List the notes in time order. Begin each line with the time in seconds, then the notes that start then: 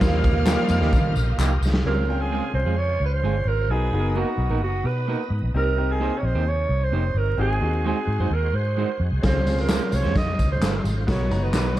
Already playing: A#3
0.00 D#2 F3 G3 A#3 D#4 F4 G4 D#5 F5 F6, kick, snare, ride, tambourine
0.24 kick, ride, tambourine
0.45 F3 G3 A#3 D#4 F4 G4, snare, clap, ride, tambourine
0.69 F2, ride, tambourine
0.81 D#2 F3 A#3 D#4 G4, snare
0.93 D#3, kick, tambourine
1.15 A#1, tambourine
1.38 C2 F3 A#3 D#4 G4, clap, tambourine
1.61 C2, tambourine
1.74 snare
1.84 C#2 C#3 C4 C#4 F4 G#4 A#4 C5
2.08 C4 C#4 F4 G5
2.21 G#4
2.31 G#3 C4 F4 G#4
2.54 C2 C5
2.65 F2 G#3 C4 F4 G#4
2.78 C#5
3.00 C#2
3.05 B4
3.13 C5
3.23 G1 G#3 C4 F4 G#4
3.45 G#1 A#4
3.68 B1 B3 D#4 F#4 G#4 A#4
3.92 F#1 B3 D#4 F#4 G#4
4.00 A#4
4.15 A#3 D#4 F#4 A#4
4.38 B1
4.49 A#1 A#3 D#4 F#4 A#4
4.61 F#1 F#4
4.84 B2 B4
5.08 A#3 D#4 F#4 A#4
5.30 G#2
5.42 A#1
5.54 C2 C3 C4 D#4 G4 A#4
5.77 C4 D#4 G4 A#4
5.91 G#4
6.00 A#3 D#4 G4 C5
6.18 C#5
6.23 A#1 C5
6.35 D#2 A#3 D#4 G4 C5
6.48 C#5
6.69 C2
6.84 C5
6.92 F1 A#3 D#4 G4 C5
7.14 G1 A#4
7.37 G#1 G#3 C4 D#4 F#4 G#4 C5
7.61 D#2 C4 D#4 F#4 G#4
7.85 G#3 D#4 F#4 G#4 C5
8.07 G#2
8.19 F#2 G#3 D#4 F#4 C5
8.30 D#2 A#4
8.53 G#2 C5
8.77 G#3 D#4 F#4 C5
9.00 F2
9.12 C2
9.22 C#2 C#3 C4 C#4 F4 G#4 C5, kick, snare, closed hi-hat, tambourine
9.45 C4 C#4 F4 G#4, closed hi-hat, tambourine
9.58 A#4, closed hi-hat
9.69 G#3 C#4 F4 C5, snare, clap, closed hi-hat, tambourine
9.92 C2 C#5, closed hi-hat, tambourine
10.03 F2 G#3 C#4 F4 C5, snare
10.16 D#5, kick, snare, closed hi-hat, tambourine
10.39 C#2, kick, closed hi-hat, tambourine
10.52 C5
10.61 G1 G#3 C#4 F4 C5, snare, clap, closed hi-hat, tambourine
10.84 G#1, closed hi-hat, tambourine
11.06 B1 F#3 B3 D#4 F#4 A#4 C#5, kick, snare, closed hi-hat, tambourine
11.30 F#1 B3 D#4 F#4 A#5, closed hi-hat, tambourine
11.43 B4
11.53 B1 F#3 B3 D#4 A#4, snare, clap, closed hi-hat, tambourine